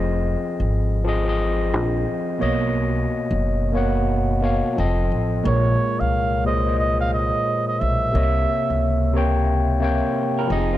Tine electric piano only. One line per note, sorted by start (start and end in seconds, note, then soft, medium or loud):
0.00 0.99 F3 medium
0.00 1.00 C4 medium
0.00 1.01 G#4 medium
0.00 1.01 D#5 medium
1.04 1.23 F3 medium
1.04 1.25 C4 medium
1.04 1.26 G#4 medium
1.09 1.27 D#5 medium
1.25 2.39 F3 medium
1.25 2.40 C4 medium
1.25 2.41 G#4 medium
1.29 2.41 D#5 medium
2.39 3.69 B2 medium
2.39 3.69 A#3 medium
2.39 3.70 C#5 medium
2.39 3.71 D#5 medium
3.72 4.38 B2 medium
3.72 4.39 A#3 medium
3.72 4.40 C#5 medium
3.77 4.41 F#5 medium
4.41 4.75 B2 medium
4.41 4.76 A#3 medium
4.41 4.76 C#5 medium
4.45 4.77 F5 medium
4.76 5.41 F3 medium
4.76 5.41 C4 medium
4.76 5.42 A4 medium
4.76 5.42 D#5 medium
5.43 6.40 A#2 medium
5.43 6.41 G#3 medium
5.43 6.42 A#4 medium
5.48 6.42 C#5 medium
6.44 6.64 A#2 medium
6.44 6.65 G#3 medium
6.44 6.66 C5 medium
6.49 6.66 D#5 medium
6.65 7.91 A#2 medium
6.65 7.92 G#3 medium
6.65 7.92 C5 medium
6.65 7.93 D#5 medium
8.12 9.10 C3 medium
8.12 9.10 A#3 medium
8.12 9.11 C#5 medium
8.12 8.23 D#5 medium
8.23 9.15 E5 medium
9.13 9.78 C3 medium
9.13 9.79 A#3 medium
9.13 9.80 C#5 medium
9.18 9.81 G5 medium
9.80 10.48 C3 medium
9.80 10.49 A#3 medium
9.80 10.49 C#5 medium
9.84 10.50 G5 medium
10.47 10.78 F3 medium
10.47 10.78 C4 medium
10.47 10.58 G4 medium
10.52 10.78 D#5 loud
10.57 10.78 G#4 medium